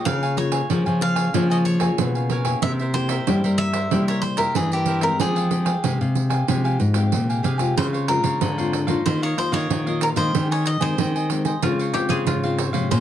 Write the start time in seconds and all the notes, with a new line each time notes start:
Already playing: A#3 F4 G#4
0.05 C#3 A#4 C#5 F5 G#5, pandeiro
0.23 C#5 F5 G#5, pandeiro
0.37 A#3 F4 G#4 C#5, muted cavaquinho stroke, pandeiro
0.52 C#5 F5 G#5, pandeiro
0.70 C#3 F3 A#3 F4 G#4 A#4 C#5 F5 G#5, pandeiro
0.86 F3 C#5 F5 G#5, pandeiro
1.01 F5, pandeiro
1.15 C#5 F5 G#5, pandeiro
1.33 C#3 F3 A#3 F4 G#4 A#4 C#5 F5 G#5, pandeiro
1.50 C#5 D#5 F5 G#5, pandeiro
1.65 C#5, muted cavaquinho stroke, pandeiro
1.80 A#3 F4 G#4 C#5 F5 G#5, pandeiro
1.98 B2 C#3, pandeiro
2.15 C#5 F5 G#5, pandeiro
2.30 A#4 C#5 F5 G#5, pandeiro
2.45 A#3 E4 G4 C#5 F5 G#5, pandeiro
2.62 C3 E4 A#4 C5 E5, pandeiro
2.79 A#4 C5 E5, pandeiro
2.94 A#3 E4 G4 C5, muted cavaquinho stroke, pandeiro
3.09 A#4 C5 E5, pandeiro
3.27 G2 G3 A#3 E4 G4 A#4 C5 E5, pandeiro
3.44 G3 A#4 C5 E5, pandeiro
3.58 E5, pandeiro
3.73 A#4 C5 E5, pandeiro
3.91 C3 G3 A#3 E4 G4 A#4 C5 E5, pandeiro
4.08 A#4 C5 C#5 E5, pandeiro
4.22 C5, muted cavaquinho stroke, pandeiro
4.37 A#3 E4 G4 A#4 C5 E5, pandeiro
4.55 G2 E3 G#4, pandeiro
4.72 G4 A#4 C5 E5, pandeiro
4.86 E4 A#4 C5 E5, pandeiro
5.01 G#3 C4 G4 A#4 C5 E5, pandeiro
5.19 F3 G4 G#4 F5 G#5, pandeiro
5.36 G4 F5 G#5, pandeiro
5.51 G#3 C4 G4, muted cavaquinho stroke, pandeiro
5.65 G4 F5 G#5, pandeiro
5.83 C3 G#3 C4 G4 G#4 F5 G#5, pandeiro
6.01 C3 F5, pandeiro
6.15 pandeiro
6.30 G4 F5 G#5, pandeiro
6.48 C3 F3 G#3 C4 G4 G#4 F5 G#5, pandeiro
6.64 G4 F5 G#5, pandeiro
6.79 G#2, muted cavaquinho stroke, pandeiro
6.94 G#3 C4 G4 F5, pandeiro
7.12 A#2 C3, pandeiro
7.29 G4 F5 G#5, pandeiro
7.43 C3 G4 G#4 F5 G#5, pandeiro
7.58 G#3 C4 F4 G4 F5 G#5, pandeiro
7.76 C#3 F4 C5 C#5 F5, pandeiro
7.93 C5 C#5 F5, pandeiro
8.08 G#3 C4 F4 A#4, pandeiro
8.23 C#3 C5 C#5 F5, pandeiro
8.41 G#2 D3 F4 C5 C#5 F5, pandeiro
8.58 G#3 C4 F4 C5 C#5 F5, pandeiro
8.73 muted cavaquinho stroke, pandeiro
8.87 A#3 D#4 F4 C5 C#5 F5, pandeiro
9.05 D#3 F4 A#4 C5 D#5 F5, pandeiro
9.22 A#4 C#5 D#5 F5, pandeiro
9.37 A#3 D#4 F4 C5, pandeiro
9.52 D#3 A#4 C#5 D#5 F5, pandeiro
9.70 A#2 D#3, pandeiro
9.86 A#3 D#4 F4 A#4 D#5 F5, pandeiro
10.00 F4 A#4 D#5 F5, pandeiro
10.16 D#3 G#3 C4 G4 A#4 C5 D#5 F5, pandeiro
10.34 D#3 G4 C5 D#5 G#5, pandeiro
10.51 C5 C#5 D#5 G#5, pandeiro
10.66 D#5, muted cavaquinho stroke, pandeiro
10.80 D#3 G#3 C4 G4 C5 D#5 G#5, pandeiro
10.98 D#3 G4 C5 D#5 G#5, pandeiro
11.15 C5 D#5 G#5, pandeiro
11.30 G#3 C4 G4, muted cavaquinho stroke, pandeiro
11.45 C5 D#5 G#5, pandeiro
11.62 C#3 G#3 C4 F4 C5 C#5 F5, pandeiro
11.79 C5 C#5 F5, pandeiro
11.94 G#3 C4 F4 G4, pandeiro
12.09 C#3 G#4 C5 C#5 F5, pandeiro
12.27 G#2 C#3 F4, pandeiro
12.44 G#3 C4 F4 C5 C#5 F5, pandeiro
12.58 F4 C5 C#5 F5, pandeiro
12.73 C3 F3 G#3 C#4 C5 C#5 F5, pandeiro
12.90 A#2 G#4 C5 C#5 F5 A#5, pandeiro